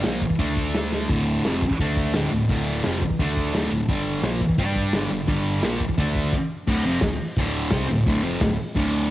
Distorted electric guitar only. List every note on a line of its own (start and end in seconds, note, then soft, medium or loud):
0.04 0.21 A#2 medium
0.04 0.21 F3 loud
0.04 0.22 A#3 loud
0.39 1.08 D3 medium
0.39 1.09 A3 medium
0.39 1.09 D4 loud
1.09 1.43 D2 loud
1.09 1.44 A2 loud
1.09 1.44 D3 medium
1.45 1.61 F2 loud
1.45 1.61 C3 loud
1.45 1.62 F3 loud
1.80 2.13 D3 medium
1.80 2.14 A3 loud
1.80 2.14 D4 loud
2.13 2.31 D2 medium
2.13 2.31 A2 medium
2.13 2.31 D3 medium
2.32 2.46 D2 medium
2.32 2.46 A2 medium
2.49 2.83 D2 medium
2.49 2.84 A2 medium
2.49 2.84 D3 loud
2.84 3.01 F2 medium
2.84 3.01 C3 medium
2.84 3.01 F3 loud
3.20 3.54 D3 medium
3.20 3.54 A3 medium
3.20 3.54 D4 loud
3.54 3.70 D2 medium
3.54 3.70 A2 medium
3.54 3.71 D3 loud
3.71 3.85 D2 medium
3.71 3.85 A2 medium
3.88 4.22 G2 medium
3.88 4.22 D3 loud
3.88 4.23 G3 medium
4.22 4.40 A#2 loud
4.22 4.40 F3 loud
4.22 4.40 A#3 loud
4.58 4.93 G3 loud
4.58 4.93 D4 medium
4.58 4.93 G4 loud
4.94 5.10 G2 medium
4.94 5.10 D3 loud
4.94 5.11 G3 medium
5.11 5.25 G2 medium
5.11 5.25 D3 medium
5.28 5.62 G2 medium
5.28 5.63 D3 medium
5.28 5.63 G3 loud
5.64 5.80 A#2 medium
5.64 5.80 F3 loud
5.64 5.81 A#3 loud
5.97 6.32 D3 medium
5.97 6.33 A3 medium
5.97 6.33 D4 loud
6.67 6.84 D2 medium
6.67 6.85 A2 loud
6.67 6.85 D3 loud
6.85 7.02 F2 medium
6.85 7.01 C3 loud
6.85 7.03 F3 loud
7.02 7.16 D2 medium
7.02 7.16 A2 medium
7.37 7.71 D2 medium
7.37 7.72 A2 medium
7.37 7.72 D3 loud
7.71 7.88 C3 medium
7.71 7.89 G3 medium
7.71 7.89 C4 loud
7.89 8.03 D2 medium
7.89 8.03 A2 medium
8.07 8.23 D2 medium
8.07 8.24 A2 medium
8.07 8.24 D3 medium
8.24 8.41 F2 medium
8.24 8.41 C3 medium
8.24 8.41 F3 medium
8.42 8.55 D2 medium
8.42 8.56 A2 medium
8.75 9.10 D2 loud
8.75 9.11 A2 loud
8.75 9.11 D3 loud